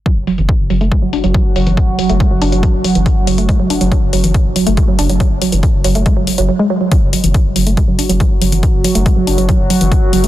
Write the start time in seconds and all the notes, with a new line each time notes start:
0.06 F#3 F#4, kick, closed hi-hat
0.17 F#1
0.27 F#3, open hi-hat
0.38 F#1 E3, closed hi-hat
0.49 kick, closed hi-hat
0.60 F#1
0.70 F#1 F#3, open hi-hat
0.81 F#1 A3, closed hi-hat
0.92 G#3, kick, closed hi-hat
1.02 F#1 F#3
1.13 D4, open hi-hat
1.24 F#1 F#3, closed hi-hat
1.34 F#3, kick, closed hi-hat
1.56 F#1 F#3, open hi-hat
1.67 F#1 E3, closed hi-hat
1.77 kick, closed hi-hat
1.88 F#1
1.99 F#3, open hi-hat
2.09 F#1 A3, closed hi-hat
2.20 G#3, kick, closed hi-hat
2.31 F#1 F#3
2.42 F#1 D4, open hi-hat
2.52 F#1 F#3, closed hi-hat
2.63 F#3, kick, closed hi-hat
2.74 F#1
2.84 F#3, open hi-hat
2.95 F#1 E3, closed hi-hat
3.06 kick, closed hi-hat
3.27 F#1 F#3, open hi-hat
3.38 F#1 A3, closed hi-hat
3.49 G#3, kick, closed hi-hat
3.60 F#1 F#3
3.70 D4, open hi-hat
3.81 F#1 F#3, closed hi-hat
3.92 F#3, kick, closed hi-hat
4.02 F#1
4.13 F#1 F#3, open hi-hat
4.24 F#1 E3, closed hi-hat
4.34 kick, closed hi-hat
4.45 F#1
4.56 F#3, open hi-hat
4.67 F#1 A3, closed hi-hat
4.77 G#3, kick, closed hi-hat
4.88 F#3
4.99 F#1 D4, open hi-hat
5.09 F#1 F#3, closed hi-hat
5.20 F#3, kick, closed hi-hat
5.31 F#1
5.42 F#3, open hi-hat
5.52 F#1 E3, closed hi-hat
5.63 kick, closed hi-hat
5.74 F#1
5.84 F#1 F#3, open hi-hat
5.95 F#1 A3, closed hi-hat
6.06 G#3, kick, closed hi-hat
6.17 F#1 F#3
6.27 F#3, open hi-hat
6.38 F#1 F#3, closed hi-hat
6.49 F#3
6.59 G#3
6.70 F#3
6.81 F#3
6.92 F#3 F#4, kick, closed hi-hat
7.02 F#1
7.13 F#3, open hi-hat
7.24 F#1 E3, closed hi-hat
7.34 kick, closed hi-hat
7.45 F#1
7.56 F#1 F#3, open hi-hat
7.67 F#1 A3, closed hi-hat
7.77 G#3, kick, closed hi-hat
7.88 F#1 F#3
7.99 D4, open hi-hat
8.09 F#1 F#3, closed hi-hat
8.20 F#3, kick, closed hi-hat
8.42 F#1 F#3, open hi-hat
8.52 F#1 E3, closed hi-hat
8.63 kick, closed hi-hat
8.74 F#1
8.84 F#3, open hi-hat
8.95 F#1 A3, closed hi-hat
9.06 G#3, kick, closed hi-hat
9.17 F#1 F#3
9.27 F#1 D4, open hi-hat
9.38 F#1 F#3, closed hi-hat
9.49 F#3, kick, closed hi-hat
9.60 F#1
9.70 F#3, open hi-hat
9.81 F#1 E3, closed hi-hat
9.92 kick, closed hi-hat
10.13 F#1 F#3, open hi-hat
10.24 F#1 A3, closed hi-hat